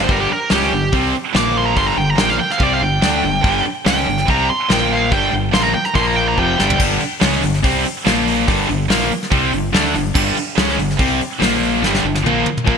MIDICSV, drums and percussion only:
0, 0, Header, 1, 2, 480
1, 0, Start_track
1, 0, Key_signature, -2, "minor"
1, 0, Tempo, 419287
1, 111, Time_signature, 4, 2, 24, 8
1, 14626, End_track
2, 0, Start_track
2, 0, Title_t, "Drums"
2, 91, Note_on_c, 9, 46, 55
2, 103, Note_on_c, 9, 36, 106
2, 206, Note_off_c, 9, 46, 0
2, 217, Note_off_c, 9, 36, 0
2, 571, Note_on_c, 9, 46, 60
2, 573, Note_on_c, 9, 38, 102
2, 685, Note_off_c, 9, 46, 0
2, 687, Note_off_c, 9, 38, 0
2, 707, Note_on_c, 9, 38, 32
2, 821, Note_off_c, 9, 38, 0
2, 1055, Note_on_c, 9, 46, 58
2, 1063, Note_on_c, 9, 36, 93
2, 1170, Note_off_c, 9, 46, 0
2, 1178, Note_off_c, 9, 36, 0
2, 1540, Note_on_c, 9, 46, 55
2, 1543, Note_on_c, 9, 38, 104
2, 1655, Note_off_c, 9, 46, 0
2, 1657, Note_off_c, 9, 38, 0
2, 2023, Note_on_c, 9, 36, 98
2, 2028, Note_on_c, 9, 46, 57
2, 2137, Note_off_c, 9, 36, 0
2, 2143, Note_off_c, 9, 46, 0
2, 2495, Note_on_c, 9, 46, 57
2, 2497, Note_on_c, 9, 38, 124
2, 2610, Note_off_c, 9, 46, 0
2, 2612, Note_off_c, 9, 38, 0
2, 2620, Note_on_c, 9, 38, 36
2, 2735, Note_off_c, 9, 38, 0
2, 2866, Note_on_c, 9, 38, 31
2, 2973, Note_on_c, 9, 46, 54
2, 2977, Note_on_c, 9, 36, 107
2, 2980, Note_off_c, 9, 38, 0
2, 3087, Note_off_c, 9, 46, 0
2, 3092, Note_off_c, 9, 36, 0
2, 3458, Note_on_c, 9, 46, 56
2, 3461, Note_on_c, 9, 38, 105
2, 3573, Note_off_c, 9, 46, 0
2, 3575, Note_off_c, 9, 38, 0
2, 3940, Note_on_c, 9, 36, 115
2, 3941, Note_on_c, 9, 46, 62
2, 4054, Note_off_c, 9, 36, 0
2, 4056, Note_off_c, 9, 46, 0
2, 4420, Note_on_c, 9, 46, 65
2, 4422, Note_on_c, 9, 38, 115
2, 4534, Note_off_c, 9, 46, 0
2, 4537, Note_off_c, 9, 38, 0
2, 4545, Note_on_c, 9, 38, 34
2, 4660, Note_off_c, 9, 38, 0
2, 4784, Note_on_c, 9, 38, 33
2, 4899, Note_off_c, 9, 38, 0
2, 4903, Note_on_c, 9, 36, 96
2, 4910, Note_on_c, 9, 46, 54
2, 5018, Note_off_c, 9, 36, 0
2, 5024, Note_off_c, 9, 46, 0
2, 5379, Note_on_c, 9, 46, 56
2, 5381, Note_on_c, 9, 38, 103
2, 5493, Note_off_c, 9, 46, 0
2, 5496, Note_off_c, 9, 38, 0
2, 5860, Note_on_c, 9, 36, 106
2, 5868, Note_on_c, 9, 46, 57
2, 5974, Note_off_c, 9, 36, 0
2, 5982, Note_off_c, 9, 46, 0
2, 6335, Note_on_c, 9, 46, 57
2, 6337, Note_on_c, 9, 38, 117
2, 6449, Note_off_c, 9, 46, 0
2, 6452, Note_off_c, 9, 38, 0
2, 6458, Note_on_c, 9, 38, 35
2, 6572, Note_off_c, 9, 38, 0
2, 6695, Note_on_c, 9, 38, 33
2, 6810, Note_off_c, 9, 38, 0
2, 6812, Note_on_c, 9, 46, 55
2, 6815, Note_on_c, 9, 36, 100
2, 6927, Note_off_c, 9, 46, 0
2, 6930, Note_off_c, 9, 36, 0
2, 7301, Note_on_c, 9, 36, 63
2, 7415, Note_off_c, 9, 36, 0
2, 7552, Note_on_c, 9, 38, 85
2, 7667, Note_off_c, 9, 38, 0
2, 7670, Note_on_c, 9, 43, 103
2, 7779, Note_on_c, 9, 49, 122
2, 7782, Note_on_c, 9, 36, 105
2, 7785, Note_off_c, 9, 43, 0
2, 7894, Note_off_c, 9, 49, 0
2, 7897, Note_off_c, 9, 36, 0
2, 8015, Note_on_c, 9, 46, 67
2, 8129, Note_off_c, 9, 46, 0
2, 8257, Note_on_c, 9, 46, 93
2, 8259, Note_on_c, 9, 38, 116
2, 8371, Note_off_c, 9, 46, 0
2, 8373, Note_off_c, 9, 38, 0
2, 8386, Note_on_c, 9, 38, 36
2, 8501, Note_off_c, 9, 38, 0
2, 8503, Note_on_c, 9, 46, 71
2, 8618, Note_off_c, 9, 46, 0
2, 8633, Note_on_c, 9, 38, 33
2, 8745, Note_on_c, 9, 46, 91
2, 8748, Note_off_c, 9, 38, 0
2, 8748, Note_on_c, 9, 36, 99
2, 8859, Note_off_c, 9, 46, 0
2, 8863, Note_off_c, 9, 36, 0
2, 8985, Note_on_c, 9, 46, 63
2, 9100, Note_off_c, 9, 46, 0
2, 9232, Note_on_c, 9, 46, 83
2, 9235, Note_on_c, 9, 38, 97
2, 9347, Note_off_c, 9, 46, 0
2, 9349, Note_off_c, 9, 38, 0
2, 9473, Note_on_c, 9, 46, 61
2, 9587, Note_off_c, 9, 46, 0
2, 9710, Note_on_c, 9, 36, 106
2, 9712, Note_on_c, 9, 46, 82
2, 9825, Note_off_c, 9, 36, 0
2, 9827, Note_off_c, 9, 46, 0
2, 9961, Note_on_c, 9, 46, 62
2, 10076, Note_off_c, 9, 46, 0
2, 10189, Note_on_c, 9, 46, 83
2, 10191, Note_on_c, 9, 38, 107
2, 10304, Note_off_c, 9, 46, 0
2, 10306, Note_off_c, 9, 38, 0
2, 10318, Note_on_c, 9, 38, 33
2, 10432, Note_off_c, 9, 38, 0
2, 10436, Note_on_c, 9, 46, 55
2, 10551, Note_off_c, 9, 46, 0
2, 10563, Note_on_c, 9, 38, 35
2, 10666, Note_on_c, 9, 36, 108
2, 10667, Note_on_c, 9, 46, 76
2, 10677, Note_off_c, 9, 38, 0
2, 10781, Note_off_c, 9, 36, 0
2, 10782, Note_off_c, 9, 46, 0
2, 10908, Note_on_c, 9, 46, 64
2, 11023, Note_off_c, 9, 46, 0
2, 11154, Note_on_c, 9, 46, 77
2, 11156, Note_on_c, 9, 38, 107
2, 11269, Note_off_c, 9, 46, 0
2, 11271, Note_off_c, 9, 38, 0
2, 11388, Note_on_c, 9, 46, 62
2, 11502, Note_off_c, 9, 46, 0
2, 11622, Note_on_c, 9, 57, 102
2, 11623, Note_on_c, 9, 36, 120
2, 11737, Note_off_c, 9, 36, 0
2, 11737, Note_off_c, 9, 57, 0
2, 11869, Note_on_c, 9, 46, 67
2, 11984, Note_off_c, 9, 46, 0
2, 12107, Note_on_c, 9, 46, 85
2, 12110, Note_on_c, 9, 38, 114
2, 12222, Note_off_c, 9, 46, 0
2, 12224, Note_off_c, 9, 38, 0
2, 12241, Note_on_c, 9, 38, 33
2, 12354, Note_on_c, 9, 46, 66
2, 12355, Note_off_c, 9, 38, 0
2, 12468, Note_off_c, 9, 46, 0
2, 12483, Note_on_c, 9, 38, 34
2, 12582, Note_on_c, 9, 46, 78
2, 12584, Note_on_c, 9, 36, 100
2, 12598, Note_off_c, 9, 38, 0
2, 12696, Note_off_c, 9, 46, 0
2, 12699, Note_off_c, 9, 36, 0
2, 12832, Note_on_c, 9, 46, 62
2, 12946, Note_off_c, 9, 46, 0
2, 13073, Note_on_c, 9, 46, 81
2, 13075, Note_on_c, 9, 38, 99
2, 13187, Note_off_c, 9, 46, 0
2, 13189, Note_off_c, 9, 38, 0
2, 13314, Note_on_c, 9, 46, 65
2, 13429, Note_off_c, 9, 46, 0
2, 13556, Note_on_c, 9, 38, 69
2, 13670, Note_off_c, 9, 38, 0
2, 13677, Note_on_c, 9, 38, 61
2, 13791, Note_off_c, 9, 38, 0
2, 13913, Note_on_c, 9, 38, 64
2, 14028, Note_off_c, 9, 38, 0
2, 14035, Note_on_c, 9, 48, 80
2, 14150, Note_off_c, 9, 48, 0
2, 14263, Note_on_c, 9, 48, 75
2, 14377, Note_off_c, 9, 48, 0
2, 14394, Note_on_c, 9, 47, 74
2, 14509, Note_off_c, 9, 47, 0
2, 14509, Note_on_c, 9, 36, 106
2, 14624, Note_off_c, 9, 36, 0
2, 14626, End_track
0, 0, End_of_file